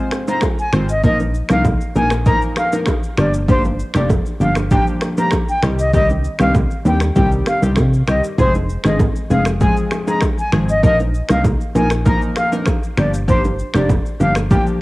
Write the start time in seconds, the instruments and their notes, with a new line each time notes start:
Already playing: synth keys G#3 C4 F4 C5
0.11 finger snap, cross-stick, high bongo, shaker
0.28 synth keys G#3 C4 F4 C5, flute A#5, low bongo, shaker
0.41 finger snap, kick, cross-stick, high bongo, shaker
0.59 flute G#5, shaker
0.73 fm bass G#1, synth keys G#3 C4 F4 C5, finger snap, cross-stick, shaker
0.89 flute D#5, shaker
1.04 fm bass A#1, synth keys F3 A#3 D#4 A#4, flute D#5, kick, low conga, shaker
1.20 low bongo, shaker
1.34 shaker
1.49 fm bass C2, synth keys F3 A#3 D#4 A#4, flute F5, finger snap, cross-stick, low bongo, shaker
1.65 kick, high bongo, low conga, shaker
1.81 shaker
1.95 fm bass A#1, synth keys F3 A#3 D#4 A#4, flute G#5, low bongo, shaker
2.10 finger snap, cross-stick, high bongo, shaker
2.26 synth keys F3 A#3 D#4 A#4, flute A#5, kick, low conga, shaker
2.42 shaker
2.56 flute F5, finger snap, cross-stick, high bongo, shaker
2.72 synth keys F3 A#3 D#4 A#4, low bongo, shaker
2.86 finger snap, kick, cross-stick, high bongo, shaker
3.03 shaker
3.18 fm bass G1, synth keys F3 A#3 D4 G4, flute D5, finger snap, cross-stick, shaker
3.34 shaker
3.48 synth keys F3 A#3 D4 G4, flute C5, kick, low conga, shaker
3.65 low bongo, shaker
3.79 shaker
3.94 fm bass F1, synth keys F3 A#3 D4 G4, flute D5, finger snap, cross-stick, low bongo, shaker
4.10 kick, high bongo, low conga, shaker
4.26 shaker
4.40 fm bass G1, synth keys F3 A#3 D4 G4, flute F5, low bongo, shaker
4.55 finger snap, cross-stick, high bongo, shaker
4.71 synth keys F3 A#3 D4 G4, flute G5, kick, low conga, shaker
4.87 shaker
5.01 finger snap, cross-stick, high bongo, shaker
5.17 synth keys F3 A#3 D4 G4, flute A#5, low bongo, shaker
5.31 finger snap, kick, cross-stick, high bongo, shaker
5.48 flute G5, shaker
5.63 fm bass C2, synth keys D#3 G3 C4 G4, finger snap, cross-stick, shaker
5.79 flute D#5, shaker
5.93 synth keys D#3 G3 C4 G4, flute D#5, kick, low conga, shaker
6.09 low bongo, shaker
6.24 shaker
6.39 fm bass C2, synth keys D#3 G3 C4 G4, flute F5, finger snap, cross-stick, low bongo, shaker
6.55 kick, high bongo, low conga, shaker
6.71 shaker
6.85 fm bass D#2, synth keys D#3 G3 C4 G4, flute G5, low bongo, shaker
7.00 finger snap, cross-stick, high bongo, shaker
7.16 fm bass C2, synth keys D#3 G3 C4 G4, flute G5, kick, low conga, shaker
7.32 shaker
7.46 flute F5, finger snap, cross-stick, high bongo, shaker
7.62 fm bass C2, synth keys D#3 G3 C4 G4, low bongo, shaker
7.76 fm bass C3, finger snap, kick, cross-stick, high bongo, shaker
7.94 shaker
8.07 fm bass C2, synth keys D#3 G3 C4 G4, flute D#5, finger snap, cross-stick, shaker
8.24 shaker
8.38 fm bass F1, synth keys F3 G#3 C4 G#4, flute C5, kick, low conga, shaker
8.54 low bongo, shaker
8.69 shaker
8.84 fm bass G#1, synth keys F3 G#3 C4 G#4, flute D#5, finger snap, cross-stick, low bongo, shaker
8.99 kick, high bongo, low conga, shaker
9.16 shaker
9.30 fm bass F1, synth keys F3 G#3 C4 G#4, flute F5, low bongo, shaker
9.45 finger snap, cross-stick, high bongo, shaker
9.61 synth keys F3 G#3 C4 G#4, flute G#5, kick, low conga, shaker
9.77 shaker
9.91 finger snap, cross-stick, high bongo, shaker
10.07 synth keys F3 G#3 C4 G#4, flute A#5, low bongo, shaker
10.21 finger snap, kick, cross-stick, high bongo, shaker
10.38 flute G#5, shaker
10.52 fm bass G#1, synth keys F3 G#3 C4 G#4, finger snap, cross-stick, shaker
10.69 flute D#5, shaker
10.83 fm bass A#1, synth keys F3 A#3 D#4 A#4, flute D#5, kick, low conga, shaker
10.99 low bongo, shaker
11.14 shaker
11.29 fm bass C2, synth keys F3 A#3 D#4 A#4, flute F5, finger snap, cross-stick, low bongo, shaker
11.44 kick, high bongo, low conga, shaker
11.61 shaker
11.75 fm bass A#1, synth keys F3 A#3 D#4 A#4, flute G#5, low bongo, shaker
11.90 finger snap, cross-stick, high bongo, shaker
12.05 synth keys F3 A#3 D#4 A#4, flute A#5, kick, low conga, shaker
12.22 shaker
12.36 flute F5, finger snap, cross-stick, high bongo, shaker
12.52 synth keys F3 A#3 D#4 A#4, low bongo, shaker
12.66 finger snap, kick, cross-stick, high bongo, shaker
12.83 shaker
12.97 fm bass G1, synth keys F3 A#3 D4 G4, flute D5, finger snap, cross-stick, shaker
13.14 shaker
13.28 synth keys F3 A#3 D4 G4, flute C5, kick, low conga, shaker
13.44 low bongo, shaker
13.59 shaker
13.74 fm bass F1, synth keys F3 A#3 D4 G4, flute D5, finger snap, cross-stick, low bongo, shaker
13.89 kick, high bongo, low conga, shaker
14.06 shaker
14.20 fm bass G1, synth keys F3 A#3 D4 G4, flute F5, low bongo, shaker
14.35 finger snap, cross-stick, high bongo, shaker
14.50 synth keys F3 A#3 D4 G4, flute G5, kick, low conga, shaker
14.67 shaker